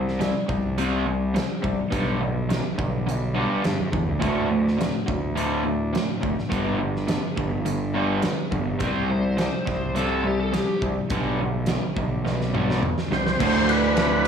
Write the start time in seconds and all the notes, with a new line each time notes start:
Already playing: C2 C3 G3
0.08 snare
0.20 C3 G3, snare, closed hi-hat
0.49 C2 C3 G3, kick
0.78 C3 G3 C4, closed hi-hat
1.06 C3 G3
1.34 C3 G3, snare, closed hi-hat
1.62 C2 C3 G3, kick
1.90 B1 G2 D3 G3, kick, closed hi-hat
2.21 G2 D3
2.49 G2 D3, snare, closed hi-hat
2.78 B1 G2 D3, kick
3.07 G2 D3, closed hi-hat
3.34 G2 D3 G3
3.63 G2 D3, snare, closed hi-hat
3.80 F#2
3.92 E2 G2 D3, kick
4.09 D2
4.20 D2 A2 D3, kick, closed hi-hat
4.50 D2 A2
4.67 snare
4.78 D2 A2, closed hi-hat
4.82 snare
5.06 D2 A2, kick
5.35 D2 A2 D3, closed hi-hat
5.64 D2 A2
5.93 D2 A2, snare, closed hi-hat
6.21 D2 A2, kick
6.38 snare
6.49 G1 G2 D3 G3, kick, closed hi-hat
6.79 G2 D3
6.96 snare
7.07 G2 D3, snare, closed hi-hat
7.37 G1 G2 D3, kick
7.65 G2 D3, closed hi-hat
7.94 G2 D3 G3
8.22 G2 D3, snare, closed hi-hat
8.51 G1 G2 D3, kick
8.79 C2 C3 G3 C4 C5, kick, closed hi-hat
9.10 C3 G3
9.37 C3 G3, snare, closed hi-hat
9.66 C2 C3 G3, kick, snare
9.95 C3 G3 C4 A4, closed hi-hat
10.24 C3 G3 G4
10.40 A4
10.53 C3 G3 G4, snare, closed hi-hat
10.82 C2 C3 G3, kick
11.10 B1 G2 D3 G3, kick, closed hi-hat
11.40 G2 D3
11.66 G2 D3, snare, closed hi-hat
11.97 B1 G2 D3, kick
12.25 G2 D3, snare
12.41 snare
12.54 G2 D3 G3, mid tom
12.70 snare
12.83 G2 D3, mid tom
12.98 snare
13.11 C2 G2 D3 C5, snare
13.27 snare
13.38 D2 A2 A3 D4 F#4 D5, kick, crash
13.42 D3
13.69 B4, snare, ride
13.97 snare, ride